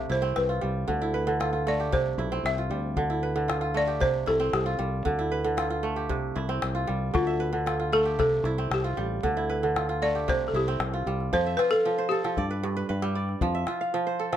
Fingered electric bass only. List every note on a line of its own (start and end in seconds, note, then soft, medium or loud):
0.10 0.32 C2 medium
0.37 0.59 C2 medium
0.63 0.85 C2 medium
0.89 1.92 D2 medium
1.92 2.14 C2 loud
2.18 2.42 B1 medium
2.44 2.68 C2 medium
2.70 2.94 D2 medium
2.96 4.00 D2 medium
4.00 4.23 C2 loud
4.28 4.50 C2 medium
4.53 4.75 C2 medium
4.79 5.01 C2 medium
5.06 6.10 D2 medium
6.10 6.32 C2 loud
6.36 6.58 C2 medium
6.63 6.85 C2 medium
6.89 7.11 C2 medium
7.15 8.18 D2 medium
8.18 8.41 C2 loud
8.44 8.66 C2 medium
8.71 8.93 C2 medium
8.98 9.20 A1 medium
9.24 10.28 D2 medium
10.28 10.51 C2 loud
10.53 10.76 C2 medium
10.80 11.02 C2 medium
11.06 11.29 C2 medium
11.33 11.55 F2 loud
12.38 12.82 G2 medium
12.90 13.34 G2 loud
13.41 13.64 F2 loud